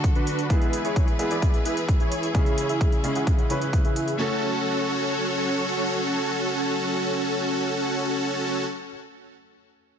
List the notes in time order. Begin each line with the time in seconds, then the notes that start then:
Already playing: D3 A3 D4 F#4 A4
0.04 kick, closed hi-hat
0.15 D4 F#4 B4, closed hi-hat
0.27 closed hi-hat
0.39 closed hi-hat
0.49 E3 G#3 B3 E4 G#4 B4, kick, closed hi-hat
0.62 closed hi-hat
0.73 closed hi-hat
0.85 E4 G#4 C#5, closed hi-hat
0.96 kick, closed hi-hat
1.08 closed hi-hat
1.19 G#3 B3 E4 G#4, closed hi-hat
1.31 E4 G#4 D5, closed hi-hat
1.42 kick, closed hi-hat
1.54 closed hi-hat
1.65 E4 G#4 B4, closed hi-hat
1.77 closed hi-hat
1.88 kick, closed hi-hat
2.00 E4 G#4 C#5, closed hi-hat
2.12 closed hi-hat
2.23 closed hi-hat
2.33 C#3 G#3 C#4 E4 G#4 C#5, kick, closed hi-hat
2.46 closed hi-hat
2.58 closed hi-hat
2.69 E4 G#4 E5, closed hi-hat
2.81 kick, closed hi-hat
2.92 closed hi-hat
3.03 C#3 G#3 C#4 E4 G#4, closed hi-hat
3.15 E4 G#4 F#5, closed hi-hat
3.27 kick, closed hi-hat
3.39 closed hi-hat
3.49 C#3 G#3 C#4 E4 G#4 B4 C#5, closed hi-hat
3.62 closed hi-hat
3.73 kick, closed hi-hat
3.85 E4 G#4 E5, closed hi-hat
3.96 closed hi-hat
4.08 closed hi-hat
4.18 F#3 A3 C#4 F#4 A4 C#5